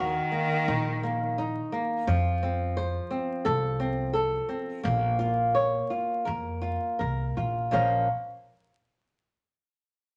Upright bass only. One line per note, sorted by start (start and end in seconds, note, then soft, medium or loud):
0.00 0.19 D#2 medium
0.68 1.58 A#1 medium
2.07 2.97 F2 medium
3.46 4.36 C2 medium
4.85 5.77 A#1 medium
6.27 6.75 F2 medium
7.01 7.34 C2 medium
7.37 7.70 A#1 medium
7.74 8.08 A#1 medium